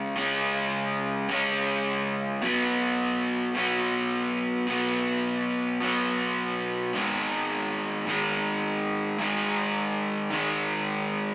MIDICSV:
0, 0, Header, 1, 2, 480
1, 0, Start_track
1, 0, Tempo, 563380
1, 148, Time_signature, 4, 2, 24, 8
1, 9666, End_track
2, 0, Start_track
2, 0, Title_t, "Overdriven electric guitar"
2, 0, Program_c, 0, 29
2, 0, Note_on_c, 0, 49, 50
2, 0, Note_on_c, 0, 56, 52
2, 0, Note_on_c, 0, 61, 51
2, 125, Note_off_c, 0, 49, 0
2, 132, Note_off_c, 0, 56, 0
2, 135, Note_on_c, 0, 49, 61
2, 139, Note_off_c, 0, 61, 0
2, 151, Note_on_c, 0, 56, 60
2, 163, Note_on_c, 0, 61, 66
2, 1086, Note_off_c, 0, 49, 0
2, 1097, Note_on_c, 0, 49, 49
2, 1098, Note_off_c, 0, 56, 0
2, 1104, Note_off_c, 0, 61, 0
2, 1116, Note_on_c, 0, 56, 54
2, 1127, Note_on_c, 0, 61, 58
2, 2051, Note_off_c, 0, 49, 0
2, 2059, Note_on_c, 0, 47, 58
2, 2061, Note_off_c, 0, 56, 0
2, 2066, Note_off_c, 0, 61, 0
2, 2076, Note_on_c, 0, 54, 61
2, 2091, Note_on_c, 0, 59, 69
2, 3020, Note_off_c, 0, 47, 0
2, 3024, Note_on_c, 0, 47, 47
2, 3038, Note_off_c, 0, 54, 0
2, 3042, Note_on_c, 0, 54, 54
2, 3050, Note_off_c, 0, 59, 0
2, 3054, Note_on_c, 0, 59, 58
2, 3977, Note_off_c, 0, 47, 0
2, 3988, Note_on_c, 0, 47, 61
2, 4002, Note_off_c, 0, 54, 0
2, 4005, Note_on_c, 0, 54, 62
2, 4012, Note_off_c, 0, 59, 0
2, 4015, Note_on_c, 0, 59, 62
2, 4935, Note_off_c, 0, 47, 0
2, 4945, Note_on_c, 0, 47, 55
2, 4961, Note_off_c, 0, 54, 0
2, 4964, Note_on_c, 0, 54, 63
2, 4974, Note_off_c, 0, 59, 0
2, 4977, Note_on_c, 0, 59, 54
2, 5898, Note_off_c, 0, 47, 0
2, 5909, Note_on_c, 0, 44, 62
2, 5926, Note_on_c, 0, 51, 71
2, 5934, Note_off_c, 0, 54, 0
2, 5938, Note_on_c, 0, 56, 69
2, 6865, Note_off_c, 0, 44, 0
2, 6868, Note_off_c, 0, 51, 0
2, 6869, Note_on_c, 0, 44, 55
2, 6886, Note_on_c, 0, 51, 56
2, 6897, Note_off_c, 0, 56, 0
2, 6900, Note_on_c, 0, 56, 61
2, 7819, Note_off_c, 0, 44, 0
2, 7827, Note_off_c, 0, 51, 0
2, 7830, Note_on_c, 0, 44, 69
2, 7846, Note_on_c, 0, 51, 71
2, 7855, Note_off_c, 0, 56, 0
2, 7858, Note_on_c, 0, 56, 72
2, 7959, Note_off_c, 0, 59, 0
2, 8774, Note_off_c, 0, 44, 0
2, 8784, Note_on_c, 0, 44, 54
2, 8786, Note_off_c, 0, 51, 0
2, 8792, Note_off_c, 0, 56, 0
2, 8801, Note_on_c, 0, 51, 61
2, 8814, Note_on_c, 0, 56, 59
2, 9666, Note_off_c, 0, 44, 0
2, 9666, Note_off_c, 0, 51, 0
2, 9666, Note_off_c, 0, 56, 0
2, 9666, End_track
0, 0, End_of_file